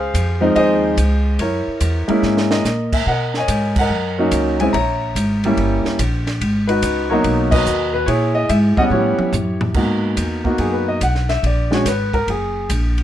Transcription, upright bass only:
0.00 0.12 C#2 medium
0.14 0.54 F2 medium
0.56 0.96 D#2 medium
0.97 1.38 C#2 medium
1.39 1.65 F#2 medium
1.67 muted upright bass stroke soft
1.81 2.07 E2 medium
2.09 muted upright bass stroke soft
2.23 2.63 G#2 medium
2.64 3.05 A#2 medium
3.06 3.47 B2 medium
3.48 3.88 G#2 medium
3.90 4.30 F#2 medium
4.31 4.72 C#2 medium
4.74 5.14 A#1 medium
5.16 5.56 G#1 medium
5.57 5.83 G1 medium
5.85 muted upright bass stroke soft
5.99 6.39 A#1 medium
6.41 6.81 G#1 medium
6.83 7.23 C#2 medium
7.24 7.65 B1 medium
7.66 8.06 D#2 loud
8.07 8.48 A#2 medium
8.49 8.76 G#2 medium
8.77 muted upright bass stroke soft
8.90 9.17 A2 medium
9.19 muted upright bass stroke soft
9.33 9.74 F#2 loud
9.75 10.16 G#2 medium
10.17 10.58 E2 medium
10.58 11.00 F#2 medium
11.01 11.42 B1 medium
11.43 11.84 A#1 medium
11.85 12.26 G#1 medium
12.27 12.68 F#1 medium
12.70 13.03 A#1 medium

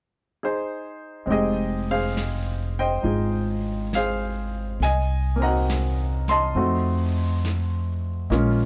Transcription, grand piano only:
0.43 1.28 D#4 soft
0.43 1.30 G#4 soft
0.43 1.26 C5 medium
1.26 4.80 G#3 soft
1.26 4.81 C4 soft
1.26 3.01 D#4 soft
1.30 3.02 G4 soft
1.30 1.90 G#4 soft
1.30 1.92 D#5 medium
1.30 2.78 G5 soft
1.91 3.04 G#4 soft
1.91 2.79 C5 soft
1.91 2.81 F5 medium
2.79 3.95 C5 soft
2.79 4.51 D#5 soft
2.79 3.90 G5 medium
3.02 4.80 D#4 soft
3.02 4.81 F4 soft
3.02 3.95 G#4 soft
3.95 4.79 G#4 soft
3.95 4.79 C5 soft
3.95 4.85 F5 medium
4.83 5.42 D#5 soft
4.83 5.44 G#5 medium
5.36 6.54 A#3 soft
5.36 6.54 C4 soft
5.42 6.55 D#4 soft
5.42 6.29 D#5 medium
5.42 6.53 F#5 soft
5.42 6.32 A#5 medium
5.47 6.56 F#4 soft
6.29 8.01 D#5 soft
6.29 8.01 A5 soft
6.29 8.00 C6 medium
6.56 8.31 A3 soft
6.56 8.31 C4 soft
6.56 8.32 D#4 soft
6.56 8.32 F#4 soft
8.30 8.65 G#3 soft
8.30 8.65 A#3 soft
8.30 8.65 C#4 soft
8.30 8.65 F4 soft

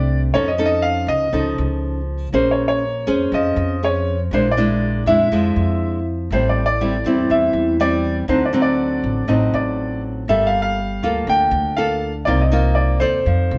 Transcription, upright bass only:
0.00 0.30 C2 medium
0.33 1.04 F2 medium
1.07 1.31 C#2 medium
1.33 1.56 C#2 medium
1.58 2.29 C#2 medium
2.33 3.03 A#1 medium
3.08 3.31 F2 medium
3.32 3.55 F2 medium
3.56 4.27 F2 medium
4.31 5.02 A#1 medium
5.06 5.29 F2 medium
5.32 5.55 F2 medium
5.56 6.27 F2 medium
6.31 7.01 A1 medium
7.04 7.28 E2 medium
7.30 7.53 E2 medium
7.53 8.25 E2 medium
8.28 8.99 D2 medium
9.04 9.27 A1 medium
9.28 9.51 A1 medium
9.53 10.24 A1 medium
10.28 10.99 G1 medium
11.03 11.26 D2 medium
11.27 11.51 D2 medium
11.51 12.23 D2 loud
12.27 12.98 C2 medium
13.01 13.25 D#2 medium
13.26 13.50 F2 medium
13.51 13.58 C2 medium

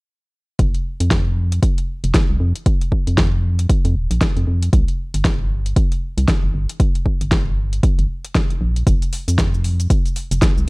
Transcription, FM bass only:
0.59 0.72 F1 loud
1.00 1.60 F2 medium
2.04 2.13 F1 loud
2.30 2.39 C2 medium
2.40 2.53 F2 medium
3.07 3.67 F2 medium
3.85 3.97 F2 loud
3.95 4.08 D#1 loud
4.11 4.20 A#1 medium
4.37 4.45 F2 loud
4.47 4.70 F2 medium
4.73 4.86 C2 loud
5.14 5.74 G1 medium
6.18 6.26 C2 loud
6.44 6.52 G1 medium
6.54 6.67 G1 medium
7.21 7.81 G1 medium
7.99 8.07 G1 loud
8.61 8.83 A#1 loud
8.87 9.00 F1 medium
9.28 9.87 F2 medium
10.31 10.40 F1 loud
10.57 10.66 C2 medium

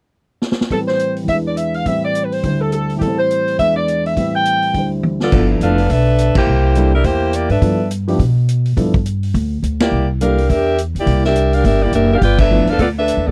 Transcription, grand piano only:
0.70 1.28 A2 soft
0.70 1.25 E3 soft
0.70 1.28 G3 soft
0.70 1.28 C4 soft
0.70 1.29 B4 soft
1.24 1.84 E2 soft
1.24 1.85 E3 soft
1.29 1.86 G#3 soft
1.29 1.88 D4 soft
1.35 1.87 B4 soft
1.87 2.44 A2 soft
1.87 2.44 E3 soft
1.87 2.43 G3 soft
1.87 2.44 C4 soft
1.87 2.45 B4 soft
2.44 3.02 D2 soft
2.44 3.02 D3 soft
2.44 3.00 G3 soft
2.44 3.02 E4 soft
2.44 3.02 C5 soft
2.96 3.56 A2 soft
2.96 3.57 E3 soft
3.01 3.59 G3 soft
3.01 3.61 C4 soft
3.07 3.62 C5 soft
3.58 4.16 E2 soft
3.58 4.15 E3 soft
3.58 4.17 G#3 soft
3.58 4.17 D4 soft
3.58 4.16 B4 soft
4.16 4.74 A2 soft
4.16 4.74 E3 soft
4.16 4.74 G3 soft
4.16 4.75 C4 soft
4.16 4.75 B4 soft
4.73 5.31 D2 soft
4.73 5.32 D3 soft
4.73 5.32 G3 soft
4.73 5.32 E4 soft
4.78 5.34 C5 soft
5.32 5.60 F3 medium
5.32 5.60 B3 medium
5.32 5.60 D4 medium
5.32 5.60 E4 medium
5.32 5.60 A4 medium
5.62 5.77 F3 soft
5.62 5.77 B3 soft
5.62 5.77 D4 soft
5.62 5.77 E4 soft
5.62 5.77 A4 medium
6.76 6.91 G3 medium
6.76 6.91 A#3 medium
6.76 6.91 D4 medium
6.76 6.92 E4 soft
6.76 6.92 A4 medium
7.62 7.77 F3 medium
7.62 7.78 B3 soft
7.62 7.78 D4 soft
7.62 7.78 E4 soft
7.62 7.78 A4 medium
8.08 8.18 F3 medium
8.08 8.18 B3 medium
8.08 8.18 D4 medium
8.08 8.19 E4 medium
8.08 8.19 G4 medium
8.77 8.92 F3 soft
8.77 8.92 B3 soft
8.77 8.92 D4 soft
8.77 8.92 E4 soft
8.77 8.93 A4 medium
10.21 10.36 G3 soft
10.21 10.36 A#3 soft
10.21 10.37 D4 soft
10.21 10.37 E4 soft
10.21 10.37 A4 medium
12.51 12.66 F3 medium
12.51 12.66 A3 medium
12.51 12.66 B3 medium
12.51 12.66 D4 medium
12.51 12.66 E4 medium

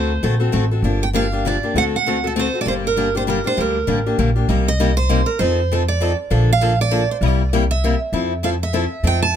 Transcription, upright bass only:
0.00 0.17 D2 medium
0.23 0.49 A#1 medium
0.53 0.79 A1 medium
0.82 1.56 G1 medium
1.74 2.48 D2 medium
2.66 3.39 G1 medium
3.58 3.82 D2 medium
3.87 4.13 A1 medium
4.18 4.44 A#1 medium
4.48 5.21 C2 medium
5.40 6.13 F2 medium
6.31 7.03 A#1 medium
7.21 7.94 C2 medium
8.12 8.85 F2 medium
9.03 9.36 F2 medium

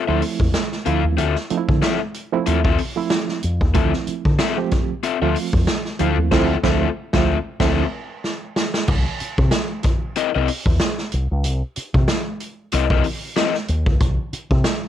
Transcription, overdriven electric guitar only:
0.08 0.21 C4 medium
0.08 0.20 F4 medium
0.08 0.20 A4 medium
0.08 0.20 E5 medium
0.86 1.01 C4 medium
0.86 1.01 F4 medium
0.86 1.02 A4 medium
0.86 1.02 F5 medium
1.17 1.33 C4 medium
1.17 1.34 F4 medium
1.17 1.34 A4 medium
1.17 1.34 E5 medium
1.82 1.98 C4 medium
1.82 1.98 F4 medium
1.82 1.98 A4 medium
1.82 1.98 E5 medium
2.46 2.59 C4 medium
2.46 2.59 F4 medium
2.46 2.59 A4 medium
2.46 2.59 E5 medium
2.64 2.77 C4 medium
2.64 2.77 F4 medium
2.64 2.77 A4 medium
2.64 2.77 E5 medium
3.74 3.90 C4 medium
3.74 3.90 F4 medium
3.74 3.91 A4 medium
3.74 3.91 E5 medium
4.39 4.55 C4 medium
4.39 4.55 F4 medium
4.39 4.55 A4 medium
4.39 4.55 E5 loud
5.03 5.15 C4 medium
5.03 5.16 F4 medium
5.03 5.16 A4 medium
5.03 5.16 E5 medium
5.22 5.34 C4 medium
5.22 5.35 F4 medium
5.22 5.34 A4 medium
5.22 5.34 E5 medium
6.00 6.15 C4 medium
6.00 6.15 F4 medium
6.00 6.16 A4 loud
6.00 6.16 F5 medium
6.32 6.54 C4 loud
6.32 6.55 F4 loud
6.32 6.55 A4 medium
6.32 6.55 E5 medium
6.64 6.87 C4 medium
6.64 6.87 F4 medium
6.64 6.87 A4 loud
6.64 6.87 E5 medium
7.14 7.36 C4 medium
7.14 7.36 F4 medium
7.14 7.36 A4 medium
7.14 7.36 E5 medium
7.60 7.84 C4 loud
7.60 7.84 F4 loud
7.60 7.83 A4 loud
7.60 7.83 E5 loud
10.17 10.29 C4 medium
10.17 10.29 E4 medium
10.17 10.29 A#4 medium
10.17 10.29 D#5 medium
10.35 10.47 C4 medium
10.35 10.47 E4 medium
10.35 10.47 A#4 medium
10.35 10.47 D#5 medium
12.73 12.85 C4 medium
12.73 12.85 E4 medium
12.73 12.85 A#4 medium
12.73 12.85 D#5 medium
12.90 13.03 C4 medium
12.90 13.03 E4 medium
12.90 13.03 A#4 medium
12.90 13.02 D#5 medium
13.36 13.52 C4 loud
13.36 13.52 E4 medium
13.36 13.52 A#4 loud
13.36 13.52 D#5 loud

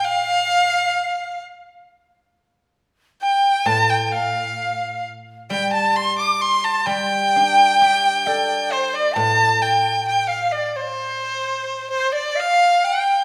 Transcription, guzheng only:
0.00 0.94 A2 medium
3.66 6.42 A2 medium
5.50 6.85 G3 medium
6.87 9.61 G3 medium
7.36 9.17 D4 medium
7.82 9.62 G4 soft
8.27 10.07 A4 medium
9.16 11.91 A2 medium

